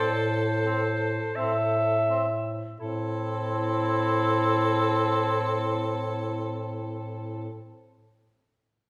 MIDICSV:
0, 0, Header, 1, 5, 480
1, 0, Start_track
1, 0, Key_signature, 0, "minor"
1, 0, Tempo, 1418440
1, 946, Time_signature, 4, 2, 24, 8
1, 947, Tempo, 1357466
1, 3103, End_track
2, 0, Start_track
2, 0, Title_t, "Clarinet"
2, 0, Program_c, 0, 71
2, 0, Note_on_c, 0, 72, 78
2, 459, Note_on_c, 0, 76, 81
2, 464, Note_off_c, 0, 72, 0
2, 943, Note_off_c, 0, 76, 0
2, 945, Note_on_c, 0, 64, 76
2, 2605, Note_off_c, 0, 64, 0
2, 3103, End_track
3, 0, Start_track
3, 0, Title_t, "Soprano saxophone"
3, 0, Program_c, 1, 64
3, 0, Note_on_c, 1, 69, 109
3, 696, Note_off_c, 1, 69, 0
3, 949, Note_on_c, 1, 69, 89
3, 2609, Note_off_c, 1, 69, 0
3, 3103, End_track
4, 0, Start_track
4, 0, Title_t, "Tenor saxophone"
4, 0, Program_c, 2, 66
4, 0, Note_on_c, 2, 60, 64
4, 41, Note_off_c, 2, 60, 0
4, 220, Note_on_c, 2, 60, 53
4, 274, Note_off_c, 2, 60, 0
4, 463, Note_on_c, 2, 60, 67
4, 517, Note_off_c, 2, 60, 0
4, 710, Note_on_c, 2, 60, 56
4, 764, Note_off_c, 2, 60, 0
4, 950, Note_on_c, 2, 60, 78
4, 2609, Note_off_c, 2, 60, 0
4, 3103, End_track
5, 0, Start_track
5, 0, Title_t, "Bass clarinet"
5, 0, Program_c, 3, 71
5, 0, Note_on_c, 3, 45, 87
5, 407, Note_off_c, 3, 45, 0
5, 464, Note_on_c, 3, 45, 77
5, 892, Note_off_c, 3, 45, 0
5, 947, Note_on_c, 3, 45, 83
5, 2607, Note_off_c, 3, 45, 0
5, 3103, End_track
0, 0, End_of_file